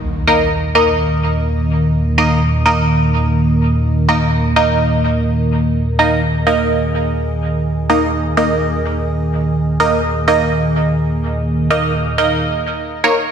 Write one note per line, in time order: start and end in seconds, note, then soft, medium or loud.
0.00 12.38 D#3 medium
0.00 0.25 A#3 medium
0.00 12.38 A#3 medium
0.00 0.25 D#4 medium
0.00 0.25 A#4 medium
0.00 12.38 A#4 medium
0.00 0.25 D#5 medium
0.00 5.74 D#5 medium
0.27 0.49 A#3 medium
0.27 0.49 D#4 medium
0.27 0.49 A#4 medium
0.27 0.49 D#5 medium
0.75 2.16 A#3 medium
0.75 2.16 D#4 medium
0.75 2.16 A#4 medium
0.75 2.16 D#5 medium
2.18 2.40 A#3 medium
2.18 2.40 D#4 medium
2.18 2.40 A#4 medium
2.18 2.40 D#5 medium
2.66 4.06 A#3 medium
2.66 4.06 D#4 medium
2.66 4.06 A#4 medium
2.66 4.06 D#5 medium
4.09 4.30 A#3 medium
4.09 4.30 D#4 medium
4.09 4.30 A#4 medium
4.09 4.30 D#5 medium
4.56 5.97 A#3 medium
4.56 5.97 D#4 medium
4.56 5.97 A#4 medium
4.56 5.97 D#5 medium
5.75 12.41 G#5 medium
5.99 6.21 A#3 medium
5.99 6.21 D#4 medium
5.99 6.21 A#4 medium
5.99 6.21 D#5 medium
6.47 7.87 A#3 medium
6.47 7.87 D#4 medium
6.47 7.87 A#4 medium
6.47 7.87 D#5 medium
7.90 8.11 A#3 medium
7.90 8.11 D#4 medium
7.90 8.11 A#4 medium
7.90 8.11 D#5 medium
8.37 9.78 A#3 medium
8.37 9.78 D#4 medium
8.37 9.78 A#4 medium
8.37 9.78 D#5 medium
9.80 10.02 A#3 medium
9.80 10.02 D#4 medium
9.80 10.02 A#4 medium
9.80 10.02 D#5 medium
10.28 11.68 A#3 medium
10.28 11.68 D#4 medium
10.28 11.68 A#4 medium
10.28 11.68 D#5 medium
11.70 11.92 A#3 medium
11.70 11.92 D#4 medium
11.70 11.92 A#4 medium
11.70 11.92 D#5 medium
12.18 13.01 A#3 medium
12.18 13.01 D#4 medium
12.18 13.01 A#4 medium
12.18 13.01 D#5 medium
13.04 13.15 A#3 medium
13.04 13.15 D#4 medium
13.04 13.15 A#4 medium
13.04 13.15 C#5 loud